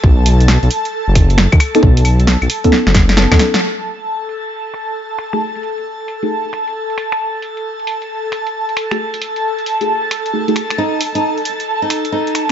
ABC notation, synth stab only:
X:1
M:4/4
L:1/16
Q:"Swing 16ths" 1/4=134
K:F#dor
V:1 name="Synth stab"
z12 z3 [B,CDA] | z6 z [B,CDA] z4 [B,CDA] [B,CDA] z2 | z12 z3 [A,DFG] | z6 z [A,DFG] z8 |
z12 z3 [A,DFG] | z6 z [A,DFG] z4 [A,DFG] [A,DFG] z2 | z16 |]